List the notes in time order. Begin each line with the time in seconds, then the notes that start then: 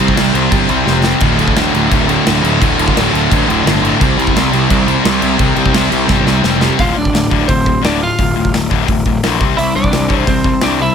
Already playing: C3 G3 C4
0.00 C2 C3 G3 C4
0.08 kick
0.15 C2 C3 G3 C4, snare, crash
0.34 C2 C3 G3 C4, crash
0.52 G1 C3 G3 C4, kick, crash
0.69 C2 C3 G3 C4, crash
0.85 F1 C3 G3 C4, snare
1.04 C3 G3 C4, snare
1.20 D1 D2 A2 D3, kick, crash
1.38 D1 D2 A2 D3, crash
1.48 kick
1.56 D1 D2 A2 D3, snare, crash
1.73 D1 D2 A2 D3, crash
1.90 D1 D2 A2 D3, kick, crash
2.08 D2 A2 D3, crash
2.25 D1 D2 A2 D3, snare, crash
2.42 D1 D2 A2 D3, crash
2.60 D1 D2 A2 D3, kick, crash
2.77 D1 D2 A2 D3, crash
2.88 kick
2.95 D1 D2 A2 D3, snare, crash
3.13 D1 D2 A2 D3, crash
3.31 A1 D2 A2 D3, kick, crash
3.48 D1 D2 A2 D3, crash
3.64 G1 D2 A2 D3, snare, crash
3.83 D2 A2 D3, crash
4.00 C2 C3 G3 C4, kick, crash
4.17 C2 C3 G3 C4, crash
4.27 kick
4.33 C2 C3 G3 C4, snare, crash
4.52 C2 C3 G3 C4, crash
4.69 C2 C3 G3 C4, kick, crash
4.87 C3 G3 C4, crash
5.04 C2 C3 G3 C4, snare, crash
5.20 C2 C3 G3 C4, crash
5.38 C2 C3 G3 C4, kick, crash
5.55 C2 C3 G3 C4, crash
5.66 kick
5.74 C2 C3 G3 C4, snare, crash
5.91 C2 C3 G3 C4, crash
6.07 G1 C3 G3 C4, kick, snare
6.25 C2 C3 G3 C4, snare
6.42 F1 C3 G3 C4, snare
6.61 C3 G3 C4, snare
6.79 D1 D2 A2 D3 F4 F5, kick, open hi-hat
6.96 D1 D2 A2 D4 D5
7.05 kick
7.13 D1 D2 A2, snare, open hi-hat
7.30 D1 D2 A2 D3, kick
7.48 D1 D2 A2 C4 C5, kick, open hi-hat
7.66 D2 A2, kick
7.82 D1 D2 A2 D3 D4 D5, snare, open hi-hat
8.01 D2 A2 F4 F5
8.19 D1 D2 A2, kick, open hi-hat
8.36 D1 D2 A2
8.45 kick
8.54 D1 D2 A2, snare, open hi-hat
8.70 D1 D2 A2 D3, kick
8.88 D1 D2 A2, kick, open hi-hat
9.05 D1 D2 A2, kick
9.23 A#1 D2 A2 D3, snare, open hi-hat
9.39 C2 C3 G3 C4, kick
9.57 C2 C3 G3 E4 E5, open hi-hat
9.75 C2 C3 G3 D4 D5
9.84 kick
9.91 C2 C3 G3, snare, open hi-hat
10.08 C2 C3 G3 C4, kick
10.19 C5
10.27 C2 C3 G3 C4 C5, kick, open hi-hat
10.44 C3 G3, kick
10.61 C2 C3 G3 C4 D4 D5, snare, open hi-hat
10.80 C3 G3 E4 E5